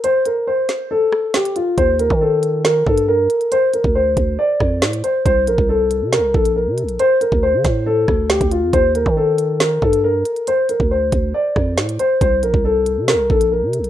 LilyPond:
<<
  \new Staff \with { instrumentName = "Grand piano" } { \time 4/4 \key d \phrygian \tempo 4 = 138 c''8 bes'8 c''4 a'4 g'8 f'8 | c''8 bes'8 a'4 bes'8 a'8 bes'4 | c''8 bes'8 c''4 d''4. c''8 | c''8 bes'8 a'4 bes'8 a'8 bes'4 |
c''8 bes'8 c''4 a'4 g'8 f'8 | c''8 bes'8 a'4 bes'8 a'8 bes'4 | c''8 bes'8 c''4 d''4. c''8 | c''8 bes'8 a'4 bes'8 a'8 bes'4 | }
  \new Staff \with { instrumentName = "808-style bass" } { \clef bass \time 4/4 \key d \phrygian r1 | ees,8. ees4.~ ees16 g,4 r8 | r8. d,8. d,8 r8 f,8 a,8 r8 | c,8 bes,,16 c,4 c16. c,16. bes,,8. c16. bes,,16. |
r8. d,8 d16 a,4 d,8. d,8 f,16 | ees,8. ees4.~ ees16 g,4 r8 | r8. d,8. d,8 r8 f,8 a,8 r8 | c,8 bes,,16 c,4 c16. c,16. bes,,8. c16. bes,,16. | }
  \new DrumStaff \with { instrumentName = "Drums" } \drummode { \time 4/4 hh8 hh8 r8 <hh sn>8 r8 ss8 <hh sn>16 hh16 hh8 | <hh bd>8 hh16 bd16 r8 hh8 <hh sn>8 bd16 hh16 r8 hh16 hh16 | hh8 hh16 bd16 r8 <hh bd>8 r8 <bd ss>8 <hh sn>16 hh16 hh8 | <hh bd>8 hh16 bd16 r8 hh8 <hh sn>8 bd16 hh16 r8 hh16 hh16 |
hh8 hh16 bd16 r8 <hh bd sn>8 r8 <bd ss>8 <hh sn>16 <hh bd>16 hh8 | <hh bd>8 hh16 bd16 r8 hh8 <hh sn>8 bd16 hh16 r8 hh16 hh16 | hh8 hh16 bd16 r8 <hh bd>8 r8 <bd ss>8 <hh sn>16 hh16 hh8 | <hh bd>8 hh16 bd16 r8 hh8 <hh sn>8 bd16 hh16 r8 hh16 hh16 | }
>>